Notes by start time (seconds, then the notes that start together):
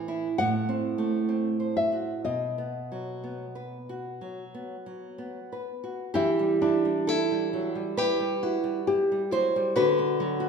Already playing: A2 E3 C5
0.08 E4
0.38 A2 F#5
0.69 C4
0.98 A3
1.29 C4
1.60 C5
1.77 E5
1.92 F#4
2.25 B2 D#5
2.58 B3
2.92 F#3
3.24 B3
3.55 B4
3.89 F#4
4.21 F#3
4.54 B3
4.86 F#3
5.18 B3
5.52 B4
5.84 F#4
6.14 E3 E4 G4
6.39 G3
6.62 D4 E4
6.85 G3
7.07 E4 A4
7.31 G3
7.53 F#3
7.75 G3
7.97 E4 G4 B4
8.20 G3
8.43 E4 F#4
8.64 G3
8.87 E4 G4
9.12 G3
9.31 F#3 E4 C5
9.56 G3
9.76 D3 F#4 B4
9.99 F#4
10.20 F#3
10.40 F#4